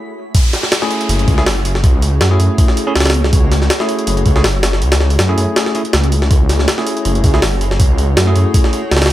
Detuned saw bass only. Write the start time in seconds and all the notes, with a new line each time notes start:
1.09 F#1
1.28 C#2
1.47 F#1
1.84 C#2
2.21 F#2
2.40 F#2
2.96 C#2
4.07 F#1
4.26 C#2
4.44 F#1
4.82 C#2
5.19 F#2
5.38 F#2
5.94 C#2
7.05 F#1
7.24 C#2
7.43 F#1
7.80 C#2
8.17 F#2
8.36 F#2
8.92 C#2